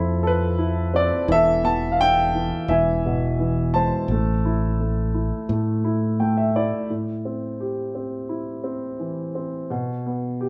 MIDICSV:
0, 0, Header, 1, 3, 480
1, 0, Start_track
1, 0, Key_signature, 0, "minor"
1, 0, Tempo, 700935
1, 880, Time_signature, 4, 2, 24, 8
1, 7185, End_track
2, 0, Start_track
2, 0, Title_t, "Grand piano"
2, 0, Program_c, 0, 0
2, 0, Control_c, 0, 64, 127
2, 0, Note_on_c, 0, 53, 63
2, 0, Note_on_c, 0, 60, 54
2, 0, Note_on_c, 0, 64, 59
2, 0, Note_on_c, 0, 69, 50
2, 0, Note_on_c, 0, 81, 65
2, 0, Note_on_c, 0, 83, 84
2, 0, Note_on_c, 0, 84, 91
2, 135, Note_off_c, 0, 60, 0
2, 147, Note_off_c, 0, 69, 0
2, 157, Note_on_c, 0, 69, 61
2, 186, Note_on_c, 0, 71, 82
2, 390, Note_off_c, 0, 64, 0
2, 400, Note_on_c, 0, 64, 52
2, 641, Note_on_c, 0, 60, 52
2, 657, Note_on_c, 0, 74, 88
2, 667, Note_off_c, 0, 71, 0
2, 853, Note_off_c, 0, 53, 0
2, 856, Note_off_c, 0, 69, 0
2, 865, Note_off_c, 0, 64, 0
2, 872, Note_off_c, 0, 74, 0
2, 873, Note_off_c, 0, 60, 0
2, 877, Note_on_c, 0, 52, 66
2, 887, Control_c, 0, 64, 0
2, 890, Note_off_c, 0, 81, 0
2, 890, Note_off_c, 0, 84, 0
2, 891, Note_off_c, 0, 83, 0
2, 903, Note_on_c, 0, 76, 102
2, 909, Note_on_c, 0, 69, 67
2, 1018, Control_c, 0, 64, 127
2, 1119, Note_on_c, 0, 59, 52
2, 1128, Note_on_c, 0, 81, 89
2, 1138, Note_off_c, 0, 76, 0
2, 1314, Note_on_c, 0, 77, 64
2, 1321, Note_off_c, 0, 81, 0
2, 1361, Note_off_c, 0, 77, 0
2, 1367, Note_on_c, 0, 62, 50
2, 1374, Note_on_c, 0, 79, 108
2, 1599, Note_off_c, 0, 52, 0
2, 1609, Note_on_c, 0, 52, 51
2, 1816, Note_off_c, 0, 59, 0
2, 1825, Note_off_c, 0, 69, 0
2, 1828, Note_off_c, 0, 62, 0
2, 1834, Note_off_c, 0, 52, 0
2, 1842, Note_on_c, 0, 76, 79
2, 1844, Note_on_c, 0, 52, 62
2, 1848, Control_c, 0, 64, 0
2, 1852, Note_on_c, 0, 80, 60
2, 1860, Note_off_c, 0, 79, 0
2, 1965, Control_c, 0, 64, 127
2, 2093, Note_on_c, 0, 47, 50
2, 2314, Note_off_c, 0, 52, 0
2, 2324, Note_on_c, 0, 52, 48
2, 2560, Note_on_c, 0, 81, 79
2, 2571, Note_on_c, 0, 56, 50
2, 2571, Note_on_c, 0, 72, 56
2, 2581, Note_off_c, 0, 76, 0
2, 2777, Note_off_c, 0, 80, 0
2, 2783, Note_off_c, 0, 47, 0
2, 2786, Note_off_c, 0, 52, 0
2, 2797, Note_off_c, 0, 56, 0
2, 2807, Control_c, 0, 64, 0
2, 2817, Note_on_c, 0, 57, 60
2, 2947, Control_c, 0, 64, 127
2, 3050, Note_on_c, 0, 64, 51
2, 3278, Note_off_c, 0, 57, 0
2, 3288, Note_on_c, 0, 57, 45
2, 3513, Note_off_c, 0, 64, 0
2, 3523, Note_on_c, 0, 64, 41
2, 3760, Note_off_c, 0, 57, 0
2, 3771, Note_on_c, 0, 57, 50
2, 3992, Note_off_c, 0, 64, 0
2, 4003, Note_on_c, 0, 64, 51
2, 4212, Note_off_c, 0, 81, 0
2, 4217, Note_off_c, 0, 72, 0
2, 4236, Note_off_c, 0, 57, 0
2, 4245, Note_on_c, 0, 79, 58
2, 4247, Note_on_c, 0, 57, 49
2, 4353, Note_off_c, 0, 79, 0
2, 4364, Note_on_c, 0, 76, 54
2, 4473, Note_off_c, 0, 76, 0
2, 4480, Note_off_c, 0, 64, 0
2, 4490, Note_on_c, 0, 64, 49
2, 4492, Note_on_c, 0, 74, 65
2, 4709, Note_off_c, 0, 57, 0
2, 4709, Note_off_c, 0, 74, 0
2, 4717, Note_off_c, 0, 64, 0
2, 4725, Note_on_c, 0, 45, 49
2, 4726, Control_c, 0, 64, 0
2, 4831, Control_c, 0, 64, 127
2, 4966, Note_on_c, 0, 60, 40
2, 5207, Note_on_c, 0, 67, 43
2, 5433, Note_off_c, 0, 60, 0
2, 5444, Note_on_c, 0, 60, 37
2, 5678, Note_on_c, 0, 64, 44
2, 5904, Note_off_c, 0, 60, 0
2, 5915, Note_on_c, 0, 60, 43
2, 6137, Note_off_c, 0, 67, 0
2, 6160, Note_on_c, 0, 52, 41
2, 6393, Note_off_c, 0, 60, 0
2, 6403, Note_on_c, 0, 60, 41
2, 6613, Note_off_c, 0, 64, 0
2, 6616, Note_off_c, 0, 45, 0
2, 6626, Note_off_c, 0, 52, 0
2, 6635, Note_off_c, 0, 60, 0
2, 6645, Note_on_c, 0, 47, 53
2, 6648, Control_c, 0, 64, 0
2, 6782, Control_c, 0, 64, 127
2, 6892, Note_on_c, 0, 59, 41
2, 7126, Note_on_c, 0, 67, 47
2, 7185, Note_off_c, 0, 47, 0
2, 7185, Note_off_c, 0, 59, 0
2, 7185, Note_off_c, 0, 67, 0
2, 7185, End_track
3, 0, Start_track
3, 0, Title_t, "Fingered electric bass"
3, 0, Program_c, 1, 33
3, 0, Note_on_c, 1, 41, 86
3, 760, Note_off_c, 1, 41, 0
3, 878, Note_on_c, 1, 28, 89
3, 1716, Note_off_c, 1, 28, 0
3, 1837, Note_on_c, 1, 28, 87
3, 2675, Note_off_c, 1, 28, 0
3, 2795, Note_on_c, 1, 33, 80
3, 3634, Note_off_c, 1, 33, 0
3, 3761, Note_on_c, 1, 45, 75
3, 4599, Note_off_c, 1, 45, 0
3, 7185, End_track
0, 0, End_of_file